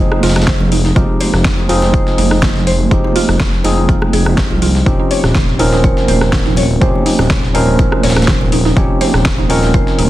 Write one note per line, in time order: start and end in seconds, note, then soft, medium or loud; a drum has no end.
0.00 0.93 F3 medium
0.00 0.93 G#3 medium
0.00 0.93 C4 medium
0.00 0.94 D#4 medium
0.00 0.94 G#4 medium
0.12 0.19 D#4 medium
0.12 cross-stick medium
0.12 high conga medium
0.23 0.55 F1 loud
0.23 0.28 F4 loud
0.23 snare medium
0.23 closed hi-hat medium
0.23 open hi-hat loud
0.29 snare medium
0.29 closed hi-hat medium
0.35 cross-stick medium
0.35 snare medium
0.35 closed hi-hat medium
0.35 muted conga medium
0.35 high conga medium
0.42 snare medium
0.42 closed hi-hat medium
0.47 0.56 C5 medium
0.47 kick loud
0.47 snare loud
0.47 closed hi-hat medium
0.60 0.92 F1 medium
0.60 muted conga medium
0.60 low conga medium
0.72 0.80 D#4 medium
0.72 closed hi-hat medium
0.72 open hi-hat loud
0.85 0.92 D#4 medium
0.85 snare soft
0.95 1.06 F1 loud
0.95 1.66 F3 medium
0.95 1.66 G#3 medium
0.95 1.67 C4 medium
0.95 1.67 D#4 medium
0.95 1.01 F4 loud
0.95 1.67 G4 medium
0.95 kick loud
0.95 closed hi-hat medium
0.95 muted conga soft
1.20 1.29 C5 medium
1.20 closed hi-hat medium
1.20 open hi-hat loud
1.20 muted conga medium
1.33 1.65 F1 loud
1.33 cross-stick medium
1.33 snare medium
1.45 1.53 D#4 medium
1.45 kick loud
1.45 snare loud
1.45 closed hi-hat medium
1.58 1.65 D#4 medium
1.58 snare soft
1.58 muted conga soft
1.69 2.02 F1 medium
1.69 2.88 F3 medium
1.69 2.88 G#3 medium
1.69 2.89 C4 medium
1.69 2.89 D#4 medium
1.69 1.74 F4 loud
1.69 2.89 G#4 medium
1.69 closed hi-hat medium
1.69 open hi-hat loud
1.82 snare medium
1.82 muted conga medium
1.94 2.02 C5 medium
1.94 kick loud
1.94 closed hi-hat medium
2.07 snare medium
2.18 2.50 F1 loud
2.18 2.26 D#4 medium
2.18 closed hi-hat medium
2.18 open hi-hat loud
2.18 muted conga medium
2.18 high conga loud
2.31 2.38 D#4 medium
2.31 cross-stick medium
2.31 snare soft
2.42 2.47 F4 loud
2.42 kick loud
2.42 snare loud
2.42 closed hi-hat medium
2.42 muted conga medium
2.55 2.87 F1 medium
2.55 snare medium
2.55 low conga medium
2.67 2.75 C5 medium
2.67 closed hi-hat medium
2.67 open hi-hat loud
2.79 muted conga medium
2.79 high conga medium
2.91 3.01 F1 loud
2.91 3.61 F3 medium
2.91 3.62 G#3 medium
2.91 3.62 C4 medium
2.91 3.00 D#4 medium
2.91 3.62 D#4 medium
2.91 3.62 G4 medium
2.91 kick loud
2.91 closed hi-hat medium
3.04 3.12 D#4 medium
3.04 muted conga medium
3.15 3.21 F4 loud
3.15 open hi-hat medium
3.15 open hi-hat loud
3.15 high conga medium
3.29 3.60 F1 loud
3.29 cross-stick medium
3.29 snare soft
3.40 3.48 C5 medium
3.40 kick loud
3.40 snare loud
3.40 closed hi-hat medium
3.53 snare medium
3.64 3.97 F1 medium
3.64 4.83 F3 medium
3.64 4.84 G#3 medium
3.64 4.84 C4 medium
3.64 3.73 D#4 medium
3.64 4.84 D#4 medium
3.64 4.84 G#4 medium
3.64 closed hi-hat medium
3.64 open hi-hat loud
3.64 muted conga medium
3.77 3.85 D#4 medium
3.77 high conga medium
3.89 3.94 F4 loud
3.89 kick loud
3.89 closed hi-hat medium
4.02 cross-stick medium
4.02 muted conga medium
4.02 high conga medium
4.13 4.52 F1 loud
4.13 4.22 G#4 medium
4.13 closed hi-hat medium
4.13 open hi-hat loud
4.26 cross-stick medium
4.26 muted conga medium
4.26 high conga medium
4.38 4.50 G4 medium
4.38 kick loud
4.38 snare loud
4.38 closed hi-hat medium
4.50 4.82 C2 medium
4.50 4.58 F4 medium
4.50 low conga medium
4.62 4.70 F4 medium
4.62 closed hi-hat medium
4.62 open hi-hat loud
4.62 muted conga soft
4.75 snare soft
4.86 4.96 D#1 loud
4.86 5.56 F3 medium
4.86 5.57 C4 medium
4.86 5.57 C#4 medium
4.86 4.95 D#4 medium
4.86 5.57 D#4 medium
4.86 5.57 G4 medium
4.86 kick loud
4.86 closed hi-hat medium
4.99 5.07 D#4 medium
5.11 5.19 C#5 medium
5.11 closed hi-hat medium
5.11 open hi-hat loud
5.11 muted conga soft
5.24 5.55 D#1 loud
5.24 cross-stick medium
5.24 snare medium
5.35 5.43 C5 medium
5.35 kick loud
5.35 snare loud
5.35 closed hi-hat medium
5.35 muted conga medium
5.48 snare soft
5.59 5.92 D#1 medium
5.59 6.78 F3 medium
5.59 6.79 C4 medium
5.59 6.79 C#4 medium
5.59 5.68 D#4 medium
5.59 6.79 D#4 medium
5.59 6.79 A#4 medium
5.59 closed hi-hat medium
5.59 open hi-hat loud
5.73 5.80 D#4 medium
5.73 snare medium
5.73 muted conga medium
5.84 5.92 C#5 medium
5.84 kick loud
5.84 closed hi-hat medium
5.97 snare medium
5.97 muted conga medium
6.08 6.41 D#1 loud
6.08 6.17 C5 medium
6.08 closed hi-hat medium
6.08 open hi-hat loud
6.08 high conga medium
6.21 cross-stick medium
6.21 snare soft
6.33 6.41 D#4 medium
6.33 kick loud
6.33 snare loud
6.33 closed hi-hat medium
6.33 muted conga medium
6.46 6.77 D#1 medium
6.46 6.53 D#4 medium
6.46 snare medium
6.46 low conga medium
6.56 6.65 C#5 medium
6.56 closed hi-hat medium
6.56 open hi-hat loud
6.56 muted conga medium
6.71 high conga medium
6.81 6.91 D#1 loud
6.81 7.51 F3 medium
6.81 7.52 C4 medium
6.81 7.52 C#4 medium
6.81 7.52 D#4 medium
6.81 7.52 G4 medium
6.81 6.90 C5 medium
6.81 kick loud
6.81 closed hi-hat medium
6.95 muted conga medium
7.06 7.14 D#4 medium
7.06 open hi-hat medium
7.06 open hi-hat loud
7.06 high conga medium
7.19 7.50 D#1 loud
7.19 7.26 D#4 medium
7.19 cross-stick medium
7.19 snare soft
7.19 muted conga medium
7.30 7.39 C#5 medium
7.30 kick loud
7.30 snare loud
7.30 closed hi-hat medium
7.43 snare medium
7.54 7.87 D#1 medium
7.54 8.73 F3 medium
7.54 8.74 C4 medium
7.54 8.74 C#4 medium
7.54 8.74 D#4 medium
7.54 8.74 A#4 medium
7.54 7.63 C5 medium
7.54 closed hi-hat medium
7.54 open hi-hat loud
7.54 muted conga medium
7.67 high conga medium
7.79 7.87 D#4 medium
7.79 kick loud
7.79 closed hi-hat medium
7.79 muted conga medium
7.92 7.99 D#4 medium
7.92 cross-stick medium
7.92 high conga medium
8.03 8.36 D#1 loud
8.03 8.12 C#5 medium
8.03 snare medium
8.03 closed hi-hat medium
8.03 open hi-hat loud
8.10 snare medium
8.10 closed hi-hat medium
8.16 cross-stick medium
8.16 snare medium
8.16 closed hi-hat medium
8.16 muted conga soft
8.16 high conga medium
8.22 snare medium
8.22 closed hi-hat medium
8.28 8.36 C5 medium
8.28 kick loud
8.28 snare loud
8.28 closed hi-hat medium
8.41 8.72 D#1 medium
8.41 muted conga medium
8.41 low conga medium
8.52 8.61 D#4 medium
8.52 closed hi-hat medium
8.52 open hi-hat loud
8.65 8.72 D#4 medium
8.65 snare soft
8.76 8.86 D#1 loud
8.76 9.47 F3 medium
8.76 9.47 C4 medium
8.76 9.47 C#4 medium
8.76 9.47 D#4 medium
8.76 9.47 G4 medium
8.76 8.85 C#5 medium
8.76 kick loud
8.76 closed hi-hat medium
8.76 muted conga medium
9.01 9.09 C5 medium
9.01 closed hi-hat medium
9.01 open hi-hat loud
9.01 muted conga medium
9.14 9.45 D#1 loud
9.14 cross-stick medium
9.14 snare medium
9.25 9.34 D#4 medium
9.25 kick loud
9.25 snare loud
9.25 closed hi-hat medium
9.38 9.46 D#4 medium
9.38 snare soft
9.38 muted conga medium
9.49 9.82 D#1 medium
9.49 10.10 F3 medium
9.49 10.10 C4 medium
9.49 10.10 C#4 medium
9.49 10.10 D#4 medium
9.49 10.10 A#4 medium
9.49 9.58 C#5 medium
9.49 closed hi-hat medium
9.49 open hi-hat loud
9.63 snare medium
9.63 muted conga medium
9.74 9.82 C5 medium
9.74 kick loud
9.74 closed hi-hat medium
9.87 snare medium
9.98 10.10 D#1 loud
9.98 10.07 D#4 medium
9.98 closed hi-hat medium
9.98 open hi-hat loud
9.98 muted conga medium
9.98 high conga loud